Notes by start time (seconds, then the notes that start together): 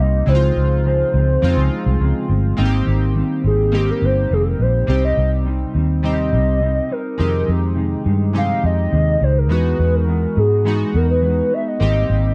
Already playing: A#3 C4 D#4 G4
0.00 C2 G3 A#3 D#5
0.26 C#2 C#3 F3 G#3 C4 D#4 E4 C5
0.35 F4
0.55 C#2 F3 G#3 C4
0.84 C#3 F3 G#3 C4 C5
1.13 C#2 F3 G#3 C4
1.42 F2 C#3 F3 G#3 C4 D#4 F4
1.57 C#2
1.71 F3 G#3 C4
1.86 C2
2.00 C#2 C#3 F3 G#3 C4
2.28 G1 F3 G#3 C4
2.57 G#1 G#2 D#3 G3 A#3 C4 D#4 F4
2.65 G4
2.86 G#1 G3 C4 D#4
3.14 D#3 G3 C4 D#4
3.44 G#1 G3 C4 D#4 G#4
3.72 G#2 D#3 G3 A#3 C4 D#4 G4
3.90 A#4
4.01 G1 G3 C4 D#4 C5
4.30 F1 D#3 G3 C4 D#4 G#4
4.43 A4
4.48 A#4
4.59 A#1 G3 C4 D#4 C5
4.87 C2 C3 G3 C4 D#4 G4
5.05 D#5
5.16 C2 G3 C4 D#4
5.45 C3 G3 C4 D#4
5.74 D#2 G3 C4 D#4
6.03 C3 G3 C4 D#4 G4 D#5
6.31 C2 G3 C4 D#4
6.60 C3 G3 C4 D#4
6.89 G3 C4 D#4 A#4
7.18 F2 C3 D#3 G#3 C4 D#4 G4
7.47 F2 D#3 G#3 D#4
7.75 C3 D#3 G#3 D#4
8.04 G2 D#3 G#3 D#4
8.33 F2 C3 D#3 G#3 C4 D#4 G4
8.37 F5
8.62 F2 D#3 G#3 D#4 D#5
8.91 D#2 C3 D#3 G#3 D#4
9.20 C#2 D#3 G#3 D#4 C5
9.38 A#4
9.49 E2 E3 G#3 B3 D#4 F#4 B4
9.77 E2 G#3 B3 D#4
9.95 A#4
10.06 E3 G#3 B3 D#4
10.35 G#2 G#3 B3 D#4 G#4
10.64 E3 G#3 B3 D#4 F#4
10.93 E2 G#3 B3 D#4 A#4
11.11 B4
11.21 E3 G#3 B3 D#4 B4
11.51 G#3 B3 D#4 E5
11.68 D#5
11.80 G#1 G#2 D#3 G3 A#3 C4 D#4 G4
12.09 G#1 G3 C4 D#4